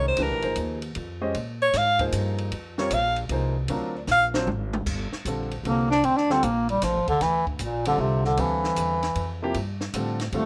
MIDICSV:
0, 0, Header, 1, 7, 480
1, 0, Start_track
1, 0, Tempo, 390625
1, 222, Time_signature, 3, 2, 24, 8
1, 12847, End_track
2, 0, Start_track
2, 0, Title_t, "Alto saxophone"
2, 0, Program_c, 0, 65
2, 98, Note_on_c, 0, 72, 87
2, 278, Note_on_c, 0, 70, 80
2, 297, Note_off_c, 0, 72, 0
2, 730, Note_off_c, 0, 70, 0
2, 1994, Note_on_c, 0, 73, 97
2, 2180, Note_on_c, 0, 77, 104
2, 2199, Note_off_c, 0, 73, 0
2, 2479, Note_off_c, 0, 77, 0
2, 3452, Note_on_c, 0, 73, 87
2, 3612, Note_on_c, 0, 77, 102
2, 3631, Note_off_c, 0, 73, 0
2, 3915, Note_off_c, 0, 77, 0
2, 4880, Note_on_c, 0, 74, 67
2, 4955, Note_off_c, 0, 74, 0
2, 5057, Note_on_c, 0, 77, 107
2, 5237, Note_off_c, 0, 77, 0
2, 12847, End_track
3, 0, Start_track
3, 0, Title_t, "Grand piano"
3, 0, Program_c, 1, 0
3, 0, Note_on_c, 1, 51, 68
3, 0, Note_on_c, 1, 56, 65
3, 0, Note_on_c, 1, 61, 55
3, 0, Note_on_c, 1, 67, 56
3, 0, Note_on_c, 1, 70, 72
3, 185, Note_off_c, 1, 51, 0
3, 186, Note_off_c, 1, 56, 0
3, 190, Note_off_c, 1, 70, 0
3, 191, Note_off_c, 1, 61, 0
3, 191, Note_off_c, 1, 67, 0
3, 227, Note_on_c, 1, 52, 56
3, 233, Note_on_c, 1, 57, 51
3, 234, Note_on_c, 1, 62, 50
3, 237, Note_on_c, 1, 71, 63
3, 240, Note_on_c, 1, 67, 53
3, 511, Note_off_c, 1, 52, 0
3, 514, Note_off_c, 1, 57, 0
3, 515, Note_off_c, 1, 62, 0
3, 516, Note_off_c, 1, 71, 0
3, 518, Note_off_c, 1, 67, 0
3, 519, Note_on_c, 1, 53, 55
3, 527, Note_on_c, 1, 68, 53
3, 529, Note_on_c, 1, 63, 49
3, 531, Note_on_c, 1, 72, 62
3, 533, Note_on_c, 1, 58, 53
3, 946, Note_off_c, 1, 53, 0
3, 950, Note_off_c, 1, 68, 0
3, 951, Note_off_c, 1, 63, 0
3, 952, Note_off_c, 1, 72, 0
3, 953, Note_off_c, 1, 58, 0
3, 1492, Note_on_c, 1, 56, 69
3, 1493, Note_on_c, 1, 67, 60
3, 1494, Note_on_c, 1, 61, 59
3, 1495, Note_on_c, 1, 72, 61
3, 1495, Note_on_c, 1, 75, 74
3, 1641, Note_off_c, 1, 56, 0
3, 1642, Note_off_c, 1, 61, 0
3, 1642, Note_off_c, 1, 67, 0
3, 1643, Note_off_c, 1, 72, 0
3, 1643, Note_off_c, 1, 75, 0
3, 2446, Note_on_c, 1, 53, 65
3, 2455, Note_on_c, 1, 58, 58
3, 2457, Note_on_c, 1, 68, 56
3, 2458, Note_on_c, 1, 72, 70
3, 2461, Note_on_c, 1, 63, 59
3, 3062, Note_off_c, 1, 53, 0
3, 3066, Note_off_c, 1, 58, 0
3, 3067, Note_off_c, 1, 68, 0
3, 3068, Note_off_c, 1, 72, 0
3, 3069, Note_off_c, 1, 63, 0
3, 3418, Note_on_c, 1, 55, 74
3, 3418, Note_on_c, 1, 60, 62
3, 3424, Note_on_c, 1, 70, 62
3, 3427, Note_on_c, 1, 65, 64
3, 3428, Note_on_c, 1, 73, 77
3, 3564, Note_off_c, 1, 55, 0
3, 3564, Note_off_c, 1, 60, 0
3, 3567, Note_off_c, 1, 70, 0
3, 3569, Note_off_c, 1, 65, 0
3, 3569, Note_off_c, 1, 73, 0
3, 4072, Note_on_c, 1, 53, 55
3, 4072, Note_on_c, 1, 58, 56
3, 4074, Note_on_c, 1, 68, 54
3, 4078, Note_on_c, 1, 63, 54
3, 4082, Note_on_c, 1, 72, 60
3, 4353, Note_off_c, 1, 53, 0
3, 4353, Note_off_c, 1, 58, 0
3, 4354, Note_off_c, 1, 68, 0
3, 4356, Note_off_c, 1, 63, 0
3, 4358, Note_off_c, 1, 72, 0
3, 4539, Note_on_c, 1, 60, 58
3, 4542, Note_on_c, 1, 54, 66
3, 4544, Note_on_c, 1, 62, 59
3, 4545, Note_on_c, 1, 65, 56
3, 4550, Note_on_c, 1, 70, 71
3, 4826, Note_off_c, 1, 60, 0
3, 4828, Note_off_c, 1, 54, 0
3, 4829, Note_off_c, 1, 62, 0
3, 4829, Note_off_c, 1, 65, 0
3, 4832, Note_off_c, 1, 70, 0
3, 5338, Note_on_c, 1, 65, 65
3, 5340, Note_on_c, 1, 54, 71
3, 5340, Note_on_c, 1, 60, 61
3, 5340, Note_on_c, 1, 62, 68
3, 5346, Note_on_c, 1, 72, 85
3, 5484, Note_off_c, 1, 60, 0
3, 5484, Note_off_c, 1, 65, 0
3, 5485, Note_off_c, 1, 54, 0
3, 5485, Note_off_c, 1, 62, 0
3, 5488, Note_off_c, 1, 72, 0
3, 6481, Note_on_c, 1, 55, 48
3, 6482, Note_on_c, 1, 50, 57
3, 6482, Note_on_c, 1, 60, 47
3, 6484, Note_on_c, 1, 65, 49
3, 6484, Note_on_c, 1, 69, 58
3, 6757, Note_off_c, 1, 55, 0
3, 6758, Note_off_c, 1, 50, 0
3, 6758, Note_off_c, 1, 60, 0
3, 6759, Note_off_c, 1, 65, 0
3, 6759, Note_off_c, 1, 69, 0
3, 6952, Note_on_c, 1, 50, 57
3, 6958, Note_on_c, 1, 60, 51
3, 6959, Note_on_c, 1, 65, 48
3, 6960, Note_on_c, 1, 69, 59
3, 6961, Note_on_c, 1, 55, 53
3, 7233, Note_off_c, 1, 50, 0
3, 7236, Note_off_c, 1, 60, 0
3, 7236, Note_off_c, 1, 65, 0
3, 7237, Note_off_c, 1, 55, 0
3, 7237, Note_off_c, 1, 69, 0
3, 7745, Note_on_c, 1, 50, 69
3, 7745, Note_on_c, 1, 55, 61
3, 7748, Note_on_c, 1, 60, 59
3, 7750, Note_on_c, 1, 65, 61
3, 7752, Note_on_c, 1, 69, 77
3, 7888, Note_off_c, 1, 50, 0
3, 7888, Note_off_c, 1, 55, 0
3, 7889, Note_off_c, 1, 60, 0
3, 7890, Note_off_c, 1, 65, 0
3, 7891, Note_off_c, 1, 69, 0
3, 9660, Note_on_c, 1, 50, 61
3, 9666, Note_on_c, 1, 60, 56
3, 9670, Note_on_c, 1, 55, 52
3, 9675, Note_on_c, 1, 65, 57
3, 9679, Note_on_c, 1, 69, 69
3, 10270, Note_off_c, 1, 50, 0
3, 10273, Note_off_c, 1, 60, 0
3, 10275, Note_off_c, 1, 55, 0
3, 10277, Note_off_c, 1, 65, 0
3, 10280, Note_off_c, 1, 69, 0
3, 10301, Note_on_c, 1, 50, 58
3, 10302, Note_on_c, 1, 55, 57
3, 10304, Note_on_c, 1, 60, 53
3, 10308, Note_on_c, 1, 77, 57
3, 10312, Note_on_c, 1, 69, 67
3, 11037, Note_off_c, 1, 50, 0
3, 11038, Note_off_c, 1, 55, 0
3, 11038, Note_off_c, 1, 60, 0
3, 11041, Note_off_c, 1, 77, 0
3, 11042, Note_off_c, 1, 69, 0
3, 11579, Note_on_c, 1, 48, 79
3, 11581, Note_on_c, 1, 53, 77
3, 11587, Note_on_c, 1, 58, 70
3, 11594, Note_on_c, 1, 64, 73
3, 11596, Note_on_c, 1, 67, 95
3, 11725, Note_off_c, 1, 48, 0
3, 11727, Note_off_c, 1, 53, 0
3, 11730, Note_off_c, 1, 58, 0
3, 11733, Note_off_c, 1, 64, 0
3, 11734, Note_off_c, 1, 67, 0
3, 12220, Note_on_c, 1, 50, 65
3, 12226, Note_on_c, 1, 60, 56
3, 12227, Note_on_c, 1, 55, 57
3, 12231, Note_on_c, 1, 65, 55
3, 12236, Note_on_c, 1, 69, 69
3, 12508, Note_off_c, 1, 50, 0
3, 12511, Note_off_c, 1, 60, 0
3, 12512, Note_off_c, 1, 55, 0
3, 12514, Note_off_c, 1, 65, 0
3, 12516, Note_off_c, 1, 69, 0
3, 12706, Note_on_c, 1, 50, 64
3, 12709, Note_on_c, 1, 60, 61
3, 12712, Note_on_c, 1, 55, 56
3, 12712, Note_on_c, 1, 65, 61
3, 12720, Note_on_c, 1, 69, 70
3, 12847, Note_off_c, 1, 50, 0
3, 12847, Note_off_c, 1, 55, 0
3, 12847, Note_off_c, 1, 60, 0
3, 12847, Note_off_c, 1, 65, 0
3, 12847, Note_off_c, 1, 69, 0
3, 12847, End_track
4, 0, Start_track
4, 0, Title_t, "Bass clarinet"
4, 0, Program_c, 2, 71
4, 6945, Note_on_c, 2, 58, 77
4, 7239, Note_off_c, 2, 58, 0
4, 7255, Note_on_c, 2, 62, 100
4, 7431, Note_on_c, 2, 60, 86
4, 7450, Note_off_c, 2, 62, 0
4, 7579, Note_on_c, 2, 62, 91
4, 7598, Note_off_c, 2, 60, 0
4, 7756, Note_on_c, 2, 60, 80
4, 7774, Note_off_c, 2, 62, 0
4, 7912, Note_on_c, 2, 58, 84
4, 7931, Note_off_c, 2, 60, 0
4, 8223, Note_off_c, 2, 58, 0
4, 8230, Note_on_c, 2, 55, 83
4, 8398, Note_on_c, 2, 53, 81
4, 8416, Note_off_c, 2, 55, 0
4, 8703, Note_off_c, 2, 53, 0
4, 8710, Note_on_c, 2, 50, 90
4, 8871, Note_on_c, 2, 52, 88
4, 8890, Note_off_c, 2, 50, 0
4, 9179, Note_off_c, 2, 52, 0
4, 9187, Note_on_c, 2, 43, 45
4, 9367, Note_on_c, 2, 46, 70
4, 9383, Note_off_c, 2, 43, 0
4, 9661, Note_off_c, 2, 46, 0
4, 9669, Note_on_c, 2, 50, 95
4, 9829, Note_on_c, 2, 48, 78
4, 9847, Note_off_c, 2, 50, 0
4, 10135, Note_off_c, 2, 48, 0
4, 10143, Note_on_c, 2, 50, 79
4, 10318, Note_on_c, 2, 52, 85
4, 10337, Note_off_c, 2, 50, 0
4, 11751, Note_off_c, 2, 52, 0
4, 12713, Note_on_c, 2, 57, 80
4, 12847, Note_off_c, 2, 57, 0
4, 12847, End_track
5, 0, Start_track
5, 0, Title_t, "Upright bass"
5, 0, Program_c, 3, 32
5, 0, Note_on_c, 3, 36, 83
5, 206, Note_off_c, 3, 36, 0
5, 214, Note_on_c, 3, 37, 79
5, 379, Note_off_c, 3, 37, 0
5, 379, Note_on_c, 3, 34, 49
5, 531, Note_off_c, 3, 34, 0
5, 539, Note_on_c, 3, 32, 60
5, 683, Note_off_c, 3, 32, 0
5, 691, Note_on_c, 3, 39, 84
5, 1162, Note_off_c, 3, 39, 0
5, 1179, Note_on_c, 3, 41, 95
5, 1646, Note_off_c, 3, 41, 0
5, 1657, Note_on_c, 3, 46, 78
5, 2125, Note_off_c, 3, 46, 0
5, 2133, Note_on_c, 3, 44, 95
5, 2602, Note_off_c, 3, 44, 0
5, 2612, Note_on_c, 3, 43, 90
5, 3082, Note_off_c, 3, 43, 0
5, 3094, Note_on_c, 3, 41, 85
5, 3563, Note_off_c, 3, 41, 0
5, 3577, Note_on_c, 3, 34, 94
5, 4040, Note_off_c, 3, 34, 0
5, 4047, Note_on_c, 3, 36, 92
5, 4519, Note_off_c, 3, 36, 0
5, 4526, Note_on_c, 3, 38, 86
5, 4998, Note_off_c, 3, 38, 0
5, 5005, Note_on_c, 3, 34, 104
5, 5478, Note_off_c, 3, 34, 0
5, 5493, Note_on_c, 3, 32, 102
5, 5962, Note_off_c, 3, 32, 0
5, 5973, Note_on_c, 3, 31, 77
5, 6273, Note_off_c, 3, 31, 0
5, 6453, Note_on_c, 3, 34, 87
5, 6917, Note_off_c, 3, 34, 0
5, 6924, Note_on_c, 3, 36, 80
5, 7398, Note_off_c, 3, 36, 0
5, 7417, Note_on_c, 3, 38, 78
5, 7884, Note_off_c, 3, 38, 0
5, 7901, Note_on_c, 3, 34, 90
5, 8367, Note_off_c, 3, 34, 0
5, 8383, Note_on_c, 3, 33, 86
5, 8540, Note_on_c, 3, 31, 49
5, 8558, Note_off_c, 3, 33, 0
5, 8686, Note_off_c, 3, 31, 0
5, 8693, Note_on_c, 3, 29, 58
5, 8846, Note_off_c, 3, 29, 0
5, 8856, Note_on_c, 3, 38, 82
5, 9325, Note_off_c, 3, 38, 0
5, 9334, Note_on_c, 3, 34, 87
5, 9804, Note_off_c, 3, 34, 0
5, 9809, Note_on_c, 3, 36, 95
5, 10281, Note_off_c, 3, 36, 0
5, 10295, Note_on_c, 3, 38, 81
5, 10764, Note_off_c, 3, 38, 0
5, 10781, Note_on_c, 3, 40, 89
5, 11242, Note_off_c, 3, 40, 0
5, 11249, Note_on_c, 3, 41, 87
5, 11722, Note_off_c, 3, 41, 0
5, 11731, Note_on_c, 3, 43, 84
5, 12203, Note_off_c, 3, 43, 0
5, 12209, Note_on_c, 3, 45, 89
5, 12679, Note_off_c, 3, 45, 0
5, 12686, Note_on_c, 3, 43, 91
5, 12847, Note_off_c, 3, 43, 0
5, 12847, End_track
6, 0, Start_track
6, 0, Title_t, "Muted upright bass strokes"
6, 6292, Note_on_c, 9, 29, 34
6, 6415, Note_off_c, 9, 29, 0
6, 12847, End_track
7, 0, Start_track
7, 0, Title_t, "Drums"
7, 204, Note_on_c, 9, 51, 65
7, 327, Note_off_c, 9, 51, 0
7, 520, Note_on_c, 9, 51, 44
7, 643, Note_off_c, 9, 51, 0
7, 682, Note_on_c, 9, 44, 58
7, 682, Note_on_c, 9, 51, 60
7, 805, Note_off_c, 9, 44, 0
7, 805, Note_off_c, 9, 51, 0
7, 1006, Note_on_c, 9, 51, 46
7, 1129, Note_off_c, 9, 51, 0
7, 1166, Note_on_c, 9, 51, 59
7, 1289, Note_off_c, 9, 51, 0
7, 1652, Note_on_c, 9, 51, 55
7, 1775, Note_off_c, 9, 51, 0
7, 2131, Note_on_c, 9, 44, 65
7, 2131, Note_on_c, 9, 51, 64
7, 2137, Note_on_c, 9, 38, 37
7, 2254, Note_off_c, 9, 44, 0
7, 2254, Note_off_c, 9, 51, 0
7, 2260, Note_off_c, 9, 38, 0
7, 2446, Note_on_c, 9, 51, 45
7, 2452, Note_on_c, 9, 36, 57
7, 2569, Note_off_c, 9, 51, 0
7, 2575, Note_off_c, 9, 36, 0
7, 2610, Note_on_c, 9, 44, 58
7, 2610, Note_on_c, 9, 51, 69
7, 2733, Note_off_c, 9, 44, 0
7, 2733, Note_off_c, 9, 51, 0
7, 2929, Note_on_c, 9, 51, 44
7, 3052, Note_off_c, 9, 51, 0
7, 3092, Note_on_c, 9, 51, 62
7, 3215, Note_off_c, 9, 51, 0
7, 3417, Note_on_c, 9, 38, 53
7, 3539, Note_off_c, 9, 38, 0
7, 3570, Note_on_c, 9, 44, 58
7, 3570, Note_on_c, 9, 51, 71
7, 3693, Note_off_c, 9, 44, 0
7, 3693, Note_off_c, 9, 51, 0
7, 3885, Note_on_c, 9, 51, 46
7, 4008, Note_off_c, 9, 51, 0
7, 4044, Note_on_c, 9, 51, 67
7, 4167, Note_off_c, 9, 51, 0
7, 4523, Note_on_c, 9, 51, 67
7, 4646, Note_off_c, 9, 51, 0
7, 5003, Note_on_c, 9, 44, 62
7, 5009, Note_on_c, 9, 38, 47
7, 5126, Note_off_c, 9, 44, 0
7, 5132, Note_off_c, 9, 38, 0
7, 5334, Note_on_c, 9, 38, 74
7, 5457, Note_off_c, 9, 38, 0
7, 5499, Note_on_c, 9, 47, 69
7, 5622, Note_off_c, 9, 47, 0
7, 5817, Note_on_c, 9, 47, 96
7, 5940, Note_off_c, 9, 47, 0
7, 5975, Note_on_c, 9, 36, 66
7, 5978, Note_on_c, 9, 49, 72
7, 6098, Note_off_c, 9, 36, 0
7, 6101, Note_off_c, 9, 49, 0
7, 6298, Note_on_c, 9, 38, 44
7, 6421, Note_off_c, 9, 38, 0
7, 6455, Note_on_c, 9, 44, 51
7, 6455, Note_on_c, 9, 51, 57
7, 6578, Note_off_c, 9, 44, 0
7, 6578, Note_off_c, 9, 51, 0
7, 6775, Note_on_c, 9, 51, 44
7, 6898, Note_off_c, 9, 51, 0
7, 6943, Note_on_c, 9, 51, 55
7, 7066, Note_off_c, 9, 51, 0
7, 7267, Note_on_c, 9, 38, 35
7, 7390, Note_off_c, 9, 38, 0
7, 7417, Note_on_c, 9, 51, 57
7, 7540, Note_off_c, 9, 51, 0
7, 7590, Note_on_c, 9, 38, 25
7, 7713, Note_off_c, 9, 38, 0
7, 7741, Note_on_c, 9, 38, 44
7, 7864, Note_off_c, 9, 38, 0
7, 7898, Note_on_c, 9, 44, 59
7, 7898, Note_on_c, 9, 51, 56
7, 8021, Note_off_c, 9, 44, 0
7, 8021, Note_off_c, 9, 51, 0
7, 8218, Note_on_c, 9, 51, 45
7, 8341, Note_off_c, 9, 51, 0
7, 8376, Note_on_c, 9, 44, 48
7, 8376, Note_on_c, 9, 51, 76
7, 8382, Note_on_c, 9, 38, 35
7, 8499, Note_off_c, 9, 44, 0
7, 8499, Note_off_c, 9, 51, 0
7, 8505, Note_off_c, 9, 38, 0
7, 8695, Note_on_c, 9, 51, 43
7, 8699, Note_on_c, 9, 36, 50
7, 8818, Note_off_c, 9, 51, 0
7, 8822, Note_off_c, 9, 36, 0
7, 8857, Note_on_c, 9, 51, 59
7, 8863, Note_on_c, 9, 38, 37
7, 8980, Note_off_c, 9, 51, 0
7, 8986, Note_off_c, 9, 38, 0
7, 9178, Note_on_c, 9, 36, 55
7, 9301, Note_off_c, 9, 36, 0
7, 9327, Note_on_c, 9, 44, 61
7, 9327, Note_on_c, 9, 51, 64
7, 9449, Note_off_c, 9, 44, 0
7, 9449, Note_off_c, 9, 51, 0
7, 9650, Note_on_c, 9, 51, 67
7, 9773, Note_off_c, 9, 51, 0
7, 10135, Note_on_c, 9, 38, 31
7, 10258, Note_off_c, 9, 38, 0
7, 10290, Note_on_c, 9, 51, 61
7, 10412, Note_off_c, 9, 51, 0
7, 10617, Note_on_c, 9, 38, 47
7, 10740, Note_off_c, 9, 38, 0
7, 10767, Note_on_c, 9, 44, 61
7, 10767, Note_on_c, 9, 51, 66
7, 10890, Note_off_c, 9, 44, 0
7, 10890, Note_off_c, 9, 51, 0
7, 11091, Note_on_c, 9, 51, 45
7, 11097, Note_on_c, 9, 38, 40
7, 11214, Note_off_c, 9, 51, 0
7, 11220, Note_off_c, 9, 38, 0
7, 11249, Note_on_c, 9, 51, 58
7, 11372, Note_off_c, 9, 51, 0
7, 11727, Note_on_c, 9, 51, 61
7, 11850, Note_off_c, 9, 51, 0
7, 12051, Note_on_c, 9, 38, 58
7, 12174, Note_off_c, 9, 38, 0
7, 12208, Note_on_c, 9, 44, 61
7, 12208, Note_on_c, 9, 51, 71
7, 12331, Note_off_c, 9, 44, 0
7, 12331, Note_off_c, 9, 51, 0
7, 12528, Note_on_c, 9, 51, 46
7, 12534, Note_on_c, 9, 38, 45
7, 12651, Note_off_c, 9, 51, 0
7, 12657, Note_off_c, 9, 38, 0
7, 12686, Note_on_c, 9, 51, 60
7, 12809, Note_off_c, 9, 51, 0
7, 12847, End_track
0, 0, End_of_file